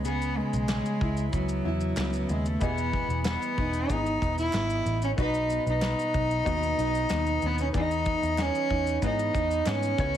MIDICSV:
0, 0, Header, 1, 6, 480
1, 0, Start_track
1, 0, Key_signature, 4, "major"
1, 0, Tempo, 641026
1, 43, Time_signature, 4, 2, 24, 8
1, 7615, End_track
2, 0, Start_track
2, 0, Title_t, "Felt piano"
2, 0, Program_c, 0, 0
2, 1947, Note_on_c, 0, 59, 69
2, 1952, Note_on_c, 0, 64, 66
2, 1957, Note_on_c, 0, 67, 51
2, 1961, Note_on_c, 0, 75, 74
2, 2008, Note_off_c, 0, 67, 0
2, 2008, Note_on_c, 0, 68, 65
2, 2121, Control_c, 0, 64, 127
2, 2677, Note_off_c, 0, 59, 0
2, 2680, Note_off_c, 0, 64, 0
2, 2684, Note_off_c, 0, 75, 0
2, 2707, Note_off_c, 0, 68, 0
2, 2904, Note_on_c, 0, 59, 68
2, 2911, Note_on_c, 0, 52, 63
2, 2915, Note_on_c, 0, 68, 66
2, 2921, Note_on_c, 0, 75, 78
2, 3635, Note_off_c, 0, 59, 0
2, 3639, Note_off_c, 0, 52, 0
2, 3641, Note_off_c, 0, 68, 0
2, 3644, Note_off_c, 0, 75, 0
2, 3868, Note_on_c, 0, 59, 72
2, 3873, Note_on_c, 0, 63, 67
2, 3877, Note_on_c, 0, 66, 65
2, 3882, Note_on_c, 0, 75, 78
2, 3891, Control_c, 0, 64, 0
2, 4016, Control_c, 0, 64, 127
2, 4597, Note_off_c, 0, 59, 0
2, 4600, Note_off_c, 0, 63, 0
2, 4602, Note_off_c, 0, 66, 0
2, 4604, Note_off_c, 0, 75, 0
2, 4826, Note_on_c, 0, 59, 87
2, 4830, Note_on_c, 0, 63, 73
2, 4834, Note_on_c, 0, 66, 76
2, 4837, Note_on_c, 0, 75, 94
2, 5556, Note_off_c, 0, 59, 0
2, 5558, Note_off_c, 0, 63, 0
2, 5560, Note_off_c, 0, 66, 0
2, 5561, Note_off_c, 0, 75, 0
2, 5786, Note_on_c, 0, 59, 72
2, 5791, Note_on_c, 0, 52, 65
2, 5796, Note_on_c, 0, 68, 69
2, 5800, Note_on_c, 0, 74, 65
2, 5811, Control_c, 0, 64, 0
2, 5846, Note_on_c, 0, 75, 84
2, 5849, Note_off_c, 0, 74, 0
2, 5962, Control_c, 0, 64, 127
2, 6515, Note_off_c, 0, 59, 0
2, 6518, Note_off_c, 0, 52, 0
2, 6520, Note_off_c, 0, 68, 0
2, 6546, Note_off_c, 0, 75, 0
2, 6753, Note_on_c, 0, 59, 74
2, 6761, Note_on_c, 0, 52, 68
2, 6764, Note_on_c, 0, 68, 69
2, 6770, Note_on_c, 0, 75, 79
2, 7460, Note_off_c, 0, 59, 0
2, 7468, Note_off_c, 0, 68, 0
2, 7471, Note_on_c, 0, 59, 73
2, 7474, Note_on_c, 0, 64, 66
2, 7479, Note_on_c, 0, 68, 67
2, 7480, Note_off_c, 0, 52, 0
2, 7484, Note_off_c, 0, 75, 0
2, 7485, Note_on_c, 0, 73, 92
2, 7489, Control_c, 0, 64, 0
2, 7609, Control_c, 0, 64, 127
2, 7615, Note_off_c, 0, 59, 0
2, 7615, Note_off_c, 0, 64, 0
2, 7615, Note_off_c, 0, 68, 0
2, 7615, Note_off_c, 0, 73, 0
2, 7615, End_track
3, 0, Start_track
3, 0, Title_t, "Steel-string acoustic guitar"
3, 0, Program_c, 1, 25
3, 34, Note_on_c, 1, 49, 81
3, 40, Note_on_c, 1, 68, 68
3, 278, Note_on_c, 1, 59, 56
3, 511, Note_off_c, 1, 68, 0
3, 514, Note_on_c, 1, 68, 63
3, 765, Note_on_c, 1, 64, 52
3, 996, Note_off_c, 1, 59, 0
3, 999, Note_on_c, 1, 59, 57
3, 1235, Note_off_c, 1, 64, 0
3, 1238, Note_on_c, 1, 64, 59
3, 1483, Note_off_c, 1, 59, 0
3, 1486, Note_on_c, 1, 59, 55
3, 1716, Note_off_c, 1, 64, 0
3, 1719, Note_on_c, 1, 64, 49
3, 1957, Note_off_c, 1, 49, 0
3, 1960, Note_on_c, 1, 52, 79
3, 1963, Note_off_c, 1, 68, 0
3, 1966, Note_on_c, 1, 68, 68
3, 2196, Note_off_c, 1, 59, 0
3, 2199, Note_on_c, 1, 59, 56
3, 2438, Note_off_c, 1, 68, 0
3, 2447, Note_on_c, 1, 68, 62
3, 2687, Note_off_c, 1, 64, 0
3, 2690, Note_on_c, 1, 63, 55
3, 2923, Note_off_c, 1, 59, 0
3, 2926, Note_on_c, 1, 59, 63
3, 3403, Note_off_c, 1, 59, 0
3, 3406, Note_on_c, 1, 59, 56
3, 3637, Note_off_c, 1, 63, 0
3, 3640, Note_on_c, 1, 63, 56
3, 3880, Note_off_c, 1, 52, 0
3, 3884, Note_off_c, 1, 68, 0
3, 3890, Note_on_c, 1, 47, 84
3, 3895, Note_on_c, 1, 71, 76
3, 4113, Note_off_c, 1, 59, 0
3, 4116, Note_on_c, 1, 59, 59
3, 4361, Note_off_c, 1, 71, 0
3, 4364, Note_on_c, 1, 71, 65
3, 4596, Note_off_c, 1, 63, 0
3, 4599, Note_on_c, 1, 63, 52
3, 4837, Note_off_c, 1, 59, 0
3, 4840, Note_on_c, 1, 59, 65
3, 5080, Note_off_c, 1, 63, 0
3, 5083, Note_on_c, 1, 63, 58
3, 5324, Note_off_c, 1, 59, 0
3, 5327, Note_on_c, 1, 59, 61
3, 5573, Note_off_c, 1, 63, 0
3, 5576, Note_on_c, 1, 63, 53
3, 5805, Note_off_c, 1, 47, 0
3, 5805, Note_on_c, 1, 52, 88
3, 5806, Note_off_c, 1, 71, 0
3, 5809, Note_on_c, 1, 68, 73
3, 6035, Note_off_c, 1, 59, 0
3, 6038, Note_on_c, 1, 59, 57
3, 6275, Note_off_c, 1, 68, 0
3, 6278, Note_on_c, 1, 68, 66
3, 6512, Note_off_c, 1, 63, 0
3, 6515, Note_on_c, 1, 63, 56
3, 6752, Note_off_c, 1, 59, 0
3, 6755, Note_on_c, 1, 59, 65
3, 6982, Note_off_c, 1, 63, 0
3, 6991, Note_on_c, 1, 63, 61
3, 7226, Note_off_c, 1, 59, 0
3, 7229, Note_on_c, 1, 59, 56
3, 7466, Note_off_c, 1, 52, 0
3, 7469, Note_on_c, 1, 49, 82
3, 7522, Note_off_c, 1, 63, 0
3, 7526, Note_off_c, 1, 68, 0
3, 7615, Note_off_c, 1, 49, 0
3, 7615, Note_off_c, 1, 59, 0
3, 7615, End_track
4, 0, Start_track
4, 0, Title_t, "Cello"
4, 0, Program_c, 2, 42
4, 55, Note_on_c, 2, 59, 86
4, 283, Note_on_c, 2, 56, 97
4, 295, Note_off_c, 2, 59, 0
4, 999, Note_off_c, 2, 56, 0
4, 1003, Note_on_c, 2, 54, 75
4, 1724, Note_on_c, 2, 56, 82
4, 1735, Note_off_c, 2, 54, 0
4, 1851, Note_on_c, 2, 57, 78
4, 1862, Note_off_c, 2, 56, 0
4, 1970, Note_on_c, 2, 59, 85
4, 1981, Note_off_c, 2, 57, 0
4, 2436, Note_off_c, 2, 59, 0
4, 2440, Note_on_c, 2, 59, 89
4, 2931, Note_on_c, 2, 63, 85
4, 2942, Note_off_c, 2, 59, 0
4, 3283, Note_off_c, 2, 63, 0
4, 3287, Note_on_c, 2, 64, 101
4, 3734, Note_off_c, 2, 64, 0
4, 3777, Note_on_c, 2, 61, 83
4, 3827, Note_off_c, 2, 61, 0
4, 3895, Note_on_c, 2, 63, 98
4, 4223, Note_off_c, 2, 63, 0
4, 4264, Note_on_c, 2, 63, 97
4, 5587, Note_on_c, 2, 59, 93
4, 5599, Note_off_c, 2, 63, 0
4, 5694, Note_off_c, 2, 59, 0
4, 5702, Note_on_c, 2, 61, 81
4, 5751, Note_off_c, 2, 61, 0
4, 5823, Note_on_c, 2, 63, 104
4, 6303, Note_on_c, 2, 61, 106
4, 6314, Note_off_c, 2, 63, 0
4, 6771, Note_off_c, 2, 61, 0
4, 6779, Note_on_c, 2, 63, 88
4, 7249, Note_on_c, 2, 61, 102
4, 7261, Note_off_c, 2, 63, 0
4, 7615, Note_off_c, 2, 61, 0
4, 7615, End_track
5, 0, Start_track
5, 0, Title_t, "Picked electric bass"
5, 0, Program_c, 3, 34
5, 0, Note_on_c, 3, 37, 106
5, 291, Note_off_c, 3, 37, 0
5, 398, Note_on_c, 3, 35, 86
5, 596, Note_off_c, 3, 35, 0
5, 760, Note_on_c, 3, 37, 86
5, 958, Note_off_c, 3, 37, 0
5, 998, Note_on_c, 3, 37, 90
5, 1196, Note_off_c, 3, 37, 0
5, 1235, Note_on_c, 3, 40, 78
5, 1434, Note_off_c, 3, 40, 0
5, 1474, Note_on_c, 3, 37, 84
5, 1674, Note_off_c, 3, 37, 0
5, 1713, Note_on_c, 3, 39, 78
5, 1914, Note_off_c, 3, 39, 0
5, 1958, Note_on_c, 3, 28, 90
5, 2254, Note_off_c, 3, 28, 0
5, 2309, Note_on_c, 3, 28, 79
5, 2511, Note_off_c, 3, 28, 0
5, 2677, Note_on_c, 3, 28, 85
5, 2875, Note_off_c, 3, 28, 0
5, 2917, Note_on_c, 3, 32, 94
5, 3116, Note_off_c, 3, 32, 0
5, 3159, Note_on_c, 3, 28, 79
5, 3357, Note_off_c, 3, 28, 0
5, 3394, Note_on_c, 3, 32, 84
5, 3594, Note_off_c, 3, 32, 0
5, 3636, Note_on_c, 3, 33, 86
5, 3835, Note_off_c, 3, 33, 0
5, 3879, Note_on_c, 3, 35, 93
5, 4175, Note_off_c, 3, 35, 0
5, 4241, Note_on_c, 3, 35, 81
5, 4438, Note_off_c, 3, 35, 0
5, 4600, Note_on_c, 3, 35, 86
5, 4797, Note_off_c, 3, 35, 0
5, 4839, Note_on_c, 3, 39, 87
5, 5036, Note_off_c, 3, 39, 0
5, 5076, Note_on_c, 3, 35, 87
5, 5275, Note_off_c, 3, 35, 0
5, 5322, Note_on_c, 3, 39, 97
5, 5518, Note_off_c, 3, 39, 0
5, 5560, Note_on_c, 3, 39, 83
5, 5757, Note_off_c, 3, 39, 0
5, 5796, Note_on_c, 3, 40, 89
5, 6092, Note_off_c, 3, 40, 0
5, 6159, Note_on_c, 3, 40, 88
5, 6356, Note_off_c, 3, 40, 0
5, 6517, Note_on_c, 3, 40, 96
5, 6715, Note_off_c, 3, 40, 0
5, 6758, Note_on_c, 3, 44, 90
5, 6955, Note_off_c, 3, 44, 0
5, 6996, Note_on_c, 3, 40, 80
5, 7194, Note_off_c, 3, 40, 0
5, 7235, Note_on_c, 3, 44, 99
5, 7433, Note_off_c, 3, 44, 0
5, 7477, Note_on_c, 3, 37, 106
5, 7615, Note_off_c, 3, 37, 0
5, 7615, End_track
6, 0, Start_track
6, 0, Title_t, "Drums"
6, 36, Note_on_c, 9, 82, 60
6, 111, Note_off_c, 9, 82, 0
6, 162, Note_on_c, 9, 82, 46
6, 237, Note_off_c, 9, 82, 0
6, 399, Note_on_c, 9, 82, 49
6, 474, Note_off_c, 9, 82, 0
6, 511, Note_on_c, 9, 82, 74
6, 514, Note_on_c, 9, 38, 106
6, 519, Note_on_c, 9, 39, 69
6, 586, Note_off_c, 9, 82, 0
6, 589, Note_off_c, 9, 38, 0
6, 594, Note_off_c, 9, 39, 0
6, 640, Note_on_c, 9, 82, 44
6, 715, Note_off_c, 9, 82, 0
6, 758, Note_on_c, 9, 36, 85
6, 833, Note_off_c, 9, 36, 0
6, 875, Note_on_c, 9, 82, 46
6, 950, Note_off_c, 9, 82, 0
6, 995, Note_on_c, 9, 82, 64
6, 996, Note_on_c, 9, 36, 72
6, 1070, Note_off_c, 9, 82, 0
6, 1071, Note_off_c, 9, 36, 0
6, 1114, Note_on_c, 9, 82, 54
6, 1189, Note_off_c, 9, 82, 0
6, 1352, Note_on_c, 9, 82, 42
6, 1427, Note_off_c, 9, 82, 0
6, 1471, Note_on_c, 9, 82, 67
6, 1476, Note_on_c, 9, 38, 103
6, 1477, Note_on_c, 9, 39, 77
6, 1546, Note_off_c, 9, 82, 0
6, 1551, Note_off_c, 9, 38, 0
6, 1552, Note_off_c, 9, 39, 0
6, 1596, Note_on_c, 9, 82, 44
6, 1671, Note_off_c, 9, 82, 0
6, 1715, Note_on_c, 9, 82, 51
6, 1790, Note_off_c, 9, 82, 0
6, 1838, Note_on_c, 9, 82, 50
6, 1913, Note_off_c, 9, 82, 0
6, 1954, Note_on_c, 9, 82, 57
6, 1957, Note_on_c, 9, 36, 90
6, 2029, Note_off_c, 9, 82, 0
6, 2032, Note_off_c, 9, 36, 0
6, 2080, Note_on_c, 9, 82, 41
6, 2155, Note_off_c, 9, 82, 0
6, 2198, Note_on_c, 9, 36, 86
6, 2273, Note_off_c, 9, 36, 0
6, 2321, Note_on_c, 9, 82, 45
6, 2396, Note_off_c, 9, 82, 0
6, 2431, Note_on_c, 9, 82, 71
6, 2434, Note_on_c, 9, 38, 116
6, 2436, Note_on_c, 9, 39, 77
6, 2506, Note_off_c, 9, 82, 0
6, 2509, Note_off_c, 9, 38, 0
6, 2511, Note_off_c, 9, 39, 0
6, 2563, Note_on_c, 9, 82, 43
6, 2638, Note_off_c, 9, 82, 0
6, 2680, Note_on_c, 9, 36, 82
6, 2755, Note_off_c, 9, 36, 0
6, 2796, Note_on_c, 9, 82, 47
6, 2871, Note_off_c, 9, 82, 0
6, 2918, Note_on_c, 9, 36, 75
6, 2918, Note_on_c, 9, 82, 61
6, 2993, Note_off_c, 9, 36, 0
6, 2993, Note_off_c, 9, 82, 0
6, 3042, Note_on_c, 9, 82, 50
6, 3117, Note_off_c, 9, 82, 0
6, 3160, Note_on_c, 9, 36, 93
6, 3162, Note_on_c, 9, 82, 52
6, 3235, Note_off_c, 9, 36, 0
6, 3237, Note_off_c, 9, 82, 0
6, 3280, Note_on_c, 9, 82, 47
6, 3355, Note_off_c, 9, 82, 0
6, 3393, Note_on_c, 9, 39, 79
6, 3394, Note_on_c, 9, 82, 67
6, 3400, Note_on_c, 9, 38, 108
6, 3468, Note_off_c, 9, 39, 0
6, 3469, Note_off_c, 9, 82, 0
6, 3475, Note_off_c, 9, 38, 0
6, 3518, Note_on_c, 9, 82, 48
6, 3593, Note_off_c, 9, 82, 0
6, 3640, Note_on_c, 9, 82, 54
6, 3715, Note_off_c, 9, 82, 0
6, 3758, Note_on_c, 9, 82, 49
6, 3833, Note_off_c, 9, 82, 0
6, 3878, Note_on_c, 9, 36, 91
6, 3878, Note_on_c, 9, 82, 57
6, 3953, Note_off_c, 9, 36, 0
6, 3953, Note_off_c, 9, 82, 0
6, 4001, Note_on_c, 9, 82, 46
6, 4076, Note_off_c, 9, 82, 0
6, 4117, Note_on_c, 9, 82, 54
6, 4192, Note_off_c, 9, 82, 0
6, 4244, Note_on_c, 9, 82, 47
6, 4319, Note_off_c, 9, 82, 0
6, 4354, Note_on_c, 9, 82, 72
6, 4357, Note_on_c, 9, 38, 106
6, 4360, Note_on_c, 9, 39, 84
6, 4429, Note_off_c, 9, 82, 0
6, 4432, Note_off_c, 9, 38, 0
6, 4435, Note_off_c, 9, 39, 0
6, 4486, Note_on_c, 9, 82, 45
6, 4561, Note_off_c, 9, 82, 0
6, 4597, Note_on_c, 9, 82, 46
6, 4601, Note_on_c, 9, 36, 92
6, 4672, Note_off_c, 9, 82, 0
6, 4675, Note_off_c, 9, 36, 0
6, 4723, Note_on_c, 9, 82, 45
6, 4798, Note_off_c, 9, 82, 0
6, 4839, Note_on_c, 9, 36, 82
6, 4843, Note_on_c, 9, 82, 67
6, 4914, Note_off_c, 9, 36, 0
6, 4918, Note_off_c, 9, 82, 0
6, 4964, Note_on_c, 9, 82, 55
6, 5039, Note_off_c, 9, 82, 0
6, 5083, Note_on_c, 9, 82, 53
6, 5158, Note_off_c, 9, 82, 0
6, 5202, Note_on_c, 9, 82, 44
6, 5277, Note_off_c, 9, 82, 0
6, 5311, Note_on_c, 9, 82, 70
6, 5317, Note_on_c, 9, 38, 119
6, 5322, Note_on_c, 9, 39, 78
6, 5386, Note_off_c, 9, 82, 0
6, 5392, Note_off_c, 9, 38, 0
6, 5397, Note_off_c, 9, 39, 0
6, 5439, Note_on_c, 9, 82, 48
6, 5514, Note_off_c, 9, 82, 0
6, 5554, Note_on_c, 9, 82, 56
6, 5629, Note_off_c, 9, 82, 0
6, 5678, Note_on_c, 9, 82, 48
6, 5753, Note_off_c, 9, 82, 0
6, 5797, Note_on_c, 9, 36, 97
6, 5797, Note_on_c, 9, 82, 64
6, 5872, Note_off_c, 9, 36, 0
6, 5872, Note_off_c, 9, 82, 0
6, 5924, Note_on_c, 9, 82, 44
6, 5999, Note_off_c, 9, 82, 0
6, 6031, Note_on_c, 9, 82, 60
6, 6037, Note_on_c, 9, 36, 95
6, 6106, Note_off_c, 9, 82, 0
6, 6112, Note_off_c, 9, 36, 0
6, 6162, Note_on_c, 9, 82, 47
6, 6237, Note_off_c, 9, 82, 0
6, 6274, Note_on_c, 9, 82, 74
6, 6278, Note_on_c, 9, 38, 111
6, 6279, Note_on_c, 9, 39, 76
6, 6349, Note_off_c, 9, 82, 0
6, 6353, Note_off_c, 9, 38, 0
6, 6353, Note_off_c, 9, 39, 0
6, 6401, Note_on_c, 9, 82, 41
6, 6476, Note_off_c, 9, 82, 0
6, 6518, Note_on_c, 9, 36, 87
6, 6593, Note_off_c, 9, 36, 0
6, 6640, Note_on_c, 9, 82, 52
6, 6715, Note_off_c, 9, 82, 0
6, 6756, Note_on_c, 9, 82, 68
6, 6757, Note_on_c, 9, 36, 79
6, 6831, Note_off_c, 9, 82, 0
6, 6832, Note_off_c, 9, 36, 0
6, 6882, Note_on_c, 9, 82, 57
6, 6957, Note_off_c, 9, 82, 0
6, 6998, Note_on_c, 9, 36, 100
6, 7002, Note_on_c, 9, 82, 57
6, 7073, Note_off_c, 9, 36, 0
6, 7077, Note_off_c, 9, 82, 0
6, 7120, Note_on_c, 9, 82, 49
6, 7195, Note_off_c, 9, 82, 0
6, 7234, Note_on_c, 9, 82, 68
6, 7236, Note_on_c, 9, 39, 80
6, 7240, Note_on_c, 9, 38, 121
6, 7309, Note_off_c, 9, 82, 0
6, 7311, Note_off_c, 9, 39, 0
6, 7314, Note_off_c, 9, 38, 0
6, 7358, Note_on_c, 9, 82, 50
6, 7433, Note_off_c, 9, 82, 0
6, 7475, Note_on_c, 9, 82, 53
6, 7477, Note_on_c, 9, 36, 104
6, 7550, Note_off_c, 9, 82, 0
6, 7551, Note_off_c, 9, 36, 0
6, 7615, End_track
0, 0, End_of_file